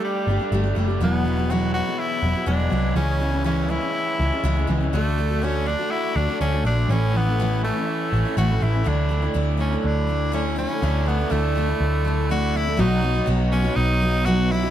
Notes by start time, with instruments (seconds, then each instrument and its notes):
Already playing: overdriven electric guitar G3 A3 D4, steel-string acoustic guitar A3 D4 G4
0.01 tenor saxophone G3, overdriven electric guitar G4
0.26 picked electric bass G1, steel-string acoustic guitar G3 A3, overdriven electric guitar D4
0.30 steel-string acoustic guitar D4 G4
0.39 steel-string acoustic guitar A3 D4 G4
0.52 picked electric bass G1, steel-string acoustic guitar G3 A3 D4 G4
0.63 steel-string acoustic guitar A3 D4 G4
0.75 picked electric bass F#1, steel-string acoustic guitar G3 A3 D4 G4
0.88 steel-string acoustic guitar A3 D4 G4
1.00 picked electric bass E1, steel-string acoustic guitar E2 B2 F#3 G#3 B3 E4, tenor saxophone B3
1.23 overdriven electric guitar B2, steel-string acoustic guitar F#3 G#3 B3
1.28 steel-string acoustic guitar E4
1.37 steel-string acoustic guitar F#3 G#3 B3 E4
1.50 steel-string acoustic guitar E2 B2 F#3 G#3 B3 E4, tenor saxophone F#4
1.74 steel-string acoustic guitar F#3 G#3 B3 E4, tenor saxophone F#4
1.85 steel-string acoustic guitar F#3 G#3 B3 E4
1.98 overdriven electric guitar E4, tenor saxophone E4
2.22 picked electric bass E1, steel-string acoustic guitar F#3 G#3 B3 E4
2.33 steel-string acoustic guitar F#3 G#3 B3 E4
2.46 picked electric bass E1, steel-string acoustic guitar E2 B2 F#3 G#3 B3 E4, tenor saxophone D4
2.58 steel-string acoustic guitar F#3 G#3 B3 E4
2.70 picked electric bass C2, steel-string acoustic guitar F#3 G#3 B3 E4
2.95 picked electric bass C#2, steel-string acoustic guitar C#3 E3 G#3 C#4 E4, tenor saxophone C#4
3.20 steel-string acoustic guitar E3 G#3 C#4 E4
3.32 steel-string acoustic guitar G#3 C#4 E4
3.44 steel-string acoustic guitar C#3 E3 G#3 C#4 E4, tenor saxophone C#4
3.68 steel-string acoustic guitar E3 G#3 C#4 E4, tenor saxophone E4
3.81 steel-string acoustic guitar G#3 C#4 E4
3.95 overdriven electric guitar E4
4.19 picked electric bass C#2, steel-string acoustic guitar E3 G#3 C#4 E4
4.30 steel-string acoustic guitar G#3 C#4 E4
4.44 picked electric bass C#2, steel-string acoustic guitar C#3 E3 G#3 C#4 E4
4.56 steel-string acoustic guitar G#3 C#4 E4
4.67 picked electric bass C#2, steel-string acoustic guitar E3 G#3 C#4 E4
4.81 steel-string acoustic guitar G#3 C#4 E4
4.93 picked electric bass D2, steel-string acoustic guitar D3 A3 D4 F#4, tenor saxophone A3
5.18 steel-string acoustic guitar D3 A3 D4 F#4
5.30 steel-string acoustic guitar A3 D4 F#4
5.42 steel-string acoustic guitar D3 A3 D4 F#4, tenor saxophone C#4
5.66 steel-string acoustic guitar D3 A3 D4 F#4, tenor saxophone D4
5.79 steel-string acoustic guitar A3 D4 F#4
5.90 tenor saxophone E4, overdriven electric guitar F#4
6.16 picked electric bass D2, steel-string acoustic guitar D3 A3 D4 F#4, tenor saxophone D4
6.28 steel-string acoustic guitar A3 D4 F#4
6.41 picked electric bass D2, steel-string acoustic guitar D3 A3 D4 F#4, tenor saxophone C#4
6.52 steel-string acoustic guitar A3 D4 F#4
6.64 picked electric bass A#1, steel-string acoustic guitar D3 A3 D4, tenor saxophone D4
6.68 steel-string acoustic guitar F#4
6.89 picked electric bass A1, steel-string acoustic guitar A2 E3 A3 C#4 E4, tenor saxophone C#4
7.14 steel-string acoustic guitar E3 A3 C#4 E4, tenor saxophone B3
7.27 steel-string acoustic guitar A3 C#4 E4
7.39 steel-string acoustic guitar A2 E3 A3 C#4 E4
7.63 steel-string acoustic guitar E3 A3, tenor saxophone A3, overdriven electric guitar C#4
7.67 steel-string acoustic guitar C#4 E4
7.76 steel-string acoustic guitar A3 C#4 E4
7.86 overdriven electric guitar E4
8.12 picked electric bass A1, steel-string acoustic guitar E3 A3, overdriven electric guitar C#4
8.16 steel-string acoustic guitar C#4 E4
8.25 steel-string acoustic guitar A3 C#4 E4
8.37 picked electric bass A1, steel-string acoustic guitar A2 E3 A3 C#4 E4, tenor saxophone F#4
8.49 steel-string acoustic guitar A3 C#4 E4
8.61 picked electric bass A1, steel-string acoustic guitar E3 A3 C#4 E4, tenor saxophone E4
8.73 steel-string acoustic guitar A3 C#4 E4
8.84 picked electric bass D2, steel-string acoustic guitar D3 A3 D4 E4, tenor saxophone D4
9.09 steel-string acoustic guitar D3 A3 D4 E4
9.22 steel-string acoustic guitar A3 D4 E4
9.34 picked electric bass D2, steel-string acoustic guitar D3 A3 D4 E4
9.57 steel-string acoustic guitar D3 A3 D4 E4, tenor saxophone C#4
9.71 steel-string acoustic guitar A3 D4 E4
9.79 tenor saxophone C#4
9.84 picked electric bass D2, tenor saxophone D4
10.07 steel-string acoustic guitar D3 A3 D4 E4
10.32 steel-string acoustic guitar D3 A3 D4 E4, tenor saxophone C#4
10.56 steel-string acoustic guitar D3 A3 D4 E4, tenor saxophone C#4
10.69 steel-string acoustic guitar A3 D4 E4
10.82 picked electric bass D2, steel-string acoustic guitar D3 A3 D4 E4
11.06 steel-string acoustic guitar D3 A3 D4 E4, tenor saxophone B3
11.19 steel-string acoustic guitar A3 D4 E4
11.30 picked electric bass D2, steel-string acoustic guitar D3 A3 D4 E4, tenor saxophone A3
11.55 steel-string acoustic guitar D3 A3 D4 E4
11.68 steel-string acoustic guitar A3 E4
11.80 picked electric bass D2
12.05 steel-string acoustic guitar D3 A3 D4 E4
12.30 steel-string acoustic guitar D3 A3 D4 E4, tenor saxophone F#4
12.54 steel-string acoustic guitar D3 A3 D4 E4, tenor saxophone E4
12.65 steel-string acoustic guitar A3 D4 E4
12.77 picked electric bass B1, steel-string acoustic guitar B2 F#3 B3 D#4 F#4, tonewheel organ F#3 B3 D#4 F#4, tenor saxophone D#4
13.01 steel-string acoustic guitar F#3 B3 D#4 F#4
13.14 steel-string acoustic guitar B3 D#4 F#4
13.26 picked electric bass B1, steel-string acoustic guitar B2 F#3 B3 D#4 F#4
13.52 steel-string acoustic guitar F#3 B3 D#4 F#4, tenor saxophone C#4
13.63 steel-string acoustic guitar B3 D#4 F#4
13.75 picked electric bass B1, tenor saxophone D#4
14.02 steel-string acoustic guitar F#3 B3 D#4 F#4
14.26 steel-string acoustic guitar B2 F#3 B3 D#4 F#4, tenor saxophone F#4
14.51 steel-string acoustic guitar F#3 B3 D#4 F#4, tenor saxophone E4
14.62 steel-string acoustic guitar B3 D#4 F#4